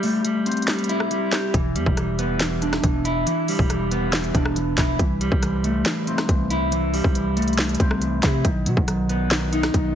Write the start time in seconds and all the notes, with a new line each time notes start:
Already playing: G3 E4 G4
0.03 A3, open hi-hat
0.25 G3, closed hi-hat
0.46 C4, closed hi-hat
0.52 closed hi-hat
0.57 closed hi-hat
0.62 closed hi-hat
0.68 G3, snare, clap, closed hi-hat
0.73 closed hi-hat
0.79 closed hi-hat
0.84 closed hi-hat
0.89 E4, closed hi-hat
1.00 cross-stick
1.11 G3, closed hi-hat
1.32 G4, snare, clap, closed hi-hat
1.54 E1 E3, kick, closed hi-hat
1.76 E2 G3, closed hi-hat
1.86 E1, kick
1.97 E3, cross-stick, closed hi-hat
2.19 B3, closed hi-hat
2.40 E3, snare, clap, closed hi-hat
2.62 D4, closed hi-hat
2.73 cross-stick, snare
2.84 E1 E3, kick, closed hi-hat
3.05 E4, closed hi-hat
3.27 E3, closed hi-hat
3.48 G3, open hi-hat
3.59 E1, kick
3.70 E3, cross-stick, closed hi-hat
3.91 B3, closed hi-hat
4.13 E3, snare, clap, closed hi-hat
4.24 closed hi-hat
4.35 E1 D4, kick, closed hi-hat
4.45 cross-stick
4.56 E3, closed hi-hat
4.78 E1 E4, kick, snare, clap, closed hi-hat
4.99 C2 E3, kick, closed hi-hat
5.21 G3, closed hi-hat
5.32 C2, kick
5.42 E3, cross-stick, closed hi-hat
5.64 A3, closed hi-hat
5.86 E3, snare, clap, closed hi-hat
6.07 C4, closed hi-hat
6.18 cross-stick, snare
6.29 C2 E3, kick, closed hi-hat
6.50 E4, closed hi-hat
6.72 E3, closed hi-hat
6.94 G3, open hi-hat
7.04 C2, kick
7.15 E3, closed hi-hat
7.37 A3, closed hi-hat
7.42 closed hi-hat
7.48 closed hi-hat
7.53 closed hi-hat
7.58 E3, snare, clap, closed hi-hat
7.64 closed hi-hat
7.69 closed hi-hat
7.75 closed hi-hat
7.80 C2 C4, kick, closed hi-hat
7.91 cross-stick
8.02 E3, closed hi-hat
8.23 C3 E4, kick, snare, clap, closed hi-hat
8.45 B1 D#3, kick, closed hi-hat
8.66 B2 F#3, closed hi-hat
8.77 B1, kick
8.88 D#3, cross-stick, closed hi-hat
9.09 B3, closed hi-hat
9.31 D#3, snare, clap, closed hi-hat
9.52 D#4, closed hi-hat
9.63 cross-stick, snare
9.74 B1 D#3, kick, closed hi-hat